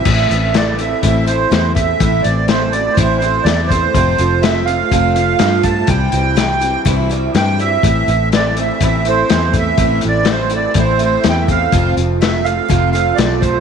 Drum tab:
CC |x-------|--------|--------|--------|
HH |-xxxxxxx|xxxxxxxx|xxxxxxxx|xxxxxxxx|
SD |--o---o-|--o---o-|--o---o-|--o---o-|
BD |o---o--o|o---o--o|o---o--o|o---o---|

CC |--------|--------|--------|
HH |xxxxxxxx|xxxxxxxx|xxxxxxxx|
SD |--o---o-|--o---o-|--o---o-|
BD |o---o--o|o---o--o|o---o--o|